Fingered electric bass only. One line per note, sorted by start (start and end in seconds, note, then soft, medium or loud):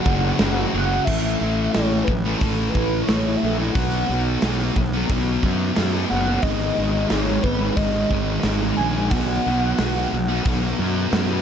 0.06 0.31 F#1 medium
0.40 0.64 F#1 medium
0.74 0.98 F#1 medium
1.08 1.34 A1 medium
1.41 1.67 A1 medium
1.76 2.02 A1 medium
2.08 2.34 A1 medium
2.42 2.68 A1 medium
2.75 3.02 A1 medium
3.09 3.35 A1 medium
3.43 3.69 A#1 medium
3.76 4.02 B1 medium
4.09 4.36 B1 medium
4.43 4.69 B1 loud
4.76 5.03 B1 medium
5.10 5.37 B1 medium
5.43 5.70 F#2 medium
5.77 6.04 F#2 medium
6.11 6.37 F#1 medium
6.43 6.70 G#1 loud
6.78 7.04 G#1 medium
7.11 7.37 G#1 medium
7.44 7.71 G#1 medium
7.77 8.04 G#1 medium
8.11 8.38 G#1 medium
8.44 8.71 G#1 medium
8.78 9.11 A#1 medium
9.11 9.38 B1 loud
9.46 9.73 B1 medium
9.79 10.05 B1 medium
10.13 10.39 B1 medium
10.46 10.72 B1 medium
10.79 11.06 F#2 medium
11.12 11.39 F#2 medium